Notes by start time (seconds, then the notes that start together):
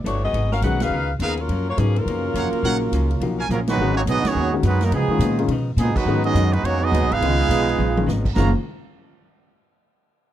0.04 G1 G3 A3 B3 D4 E4 F#4 A4 C#5, hi-hat pedal, ride
0.23 B3 F#4 G#4 D#5
0.33 G#1 G#2 F#3 B3 D#4, ride
0.52 C#4 F#4 A#4 F5, snare
0.61 B1 G#2 D#3 F#3 G#3 B3 C#4 D#4 F#4 G#4 B4 F#5, hi-hat pedal, ride
0.80 D#4 G#4 B4 F5, snare, ride
0.90 C#2 C#3 B3
0.94 F4 A#4
1.19 D#2 C#3 F3 B3 D#4 F4 G#4 A#4 B4 D#5 F5, hi-hat pedal, ride
1.37 F#3 C#4 F4 A#4, ride
1.49 F#2 F3 A#3, ride
1.53 C#4
1.69 A#3 F4 F#4 C#5
1.77 F#2 G#2 C#3 F3 F#3 A#3 B3 C#4 D#4 G#4, hi-hat pedal, ride
1.95 C#3 F#3 A#3 C#4 F4 A#4, ride
2.06 F#2 F3 A#3, ride
2.10 C#4
2.34 F2 F#2 F3 A#3 C#4 A#4 C#5 F5 F#5, hi-hat pedal, ride
2.52 muted upright bass stroke, ride
2.63 A#1 F#2 F3 F#3 A#3 D#4 F4 A#4 C#5 F5 F#5, ride
2.67 C#4
2.92 C#2 F#2 F3 A#3 C#4, hi-hat pedal, ride
3.11 ride
3.20 B1 F#2 F3 A#3 C#4 D#4 F#4, ride
3.38 A#4 C#5 F5 G#5
3.49 A#1 F#2 C#3 F3 A#3 C#4 A#4, hi-hat pedal, high tom
3.53 F#3 C#4 F4
3.67 D#3 F#3 G#3 B3 D#4 F#4 B4, snare, ride
3.78 G#1 G#2 D#3 F#3 G#3 B3 C#4 F#4
3.82 D#4
3.95 A#3 C#4 D#4 F#4 C#5
4.06 B1 G#2 F#3 B3 D#4 G#4, hi-hat pedal, ride
4.10 B3 F#4 D#5
4.23 D#3 F#3 B3 C#4 F#4 G#4 C#5, muted upright bass stroke, snare, ride
4.35 D#2 G#2 F#3 B3 D#4
4.53 D#3 G#3 C#4 F#4
4.63 F#2 G#2 D#3 F#3 G#3 B3 D#4, hi-hat pedal, ride
4.67 F#4 B4
4.81 A#3 D#4 A#4, snare, ride
4.85 F#3 B3
4.91 B2 C#3 F3 G#3 B3 D#4, ride
4.95 D#4 G#4
5.08 D#3 G#3 C#4 F4, muted upright bass stroke
5.19 A#2 C#3 F3 B3 D#4, hi-hat pedal, ride
5.39 D#3 G#3 C#4 F4, ride
5.48 B2 C#3 F3, ride
5.53 B3 D#4
5.77 A#2 B2 C#3 F3 G#3 B3 D#4 G#4, hi-hat pedal, ride
5.81 D#4
5.96 D#3 F#3 G#3 B3 D#4 F#4 B4, kick, crash
6.05 G#2 D#3 F#3 G#3 B3 C#4 D#4 F#4
6.24 F#3 B3 D#4 F#4 G#4 D#5, ride
6.34 F#2 G#2 F#3 B3 D#4, hi-hat pedal, ride
6.53 D#3 F#3 G#3 B3 D#4 F#4 B4, ride
6.63 F2 G#2 F#3 A#3 B3 C#4 D#4 F#4 C#5, ride
6.67 D#4
6.81 F#3 B3 D#4 F#4 G#4 D#5
6.92 D#2 G#2 F#3 B3 D#4, hi-hat pedal, ride
7.03 B1
7.11 G#1 G#3 B3 D#4 F4 G#4 B4 F5, ride
7.21 C#2 C#3 D#3 F3 G#3 B3 C#4 D#4 F4, ride
7.49 B1 C#3 F3 B3 D#4, hi-hat pedal, ride
7.69 ride
7.77 A#1 C#3 F3 B3 D#4, high tom
7.97 D#3 G#3 C#4 F4, high tom
8.06 G#1 C#3 F3 B3 D#4, snare, hi-hat pedal
8.25 kick, crash
8.35 F#1 F#2 C#3 D#3 F3 G#3 A#3 C#4 F4 F#4 C#5 F5 A#5, kick, snare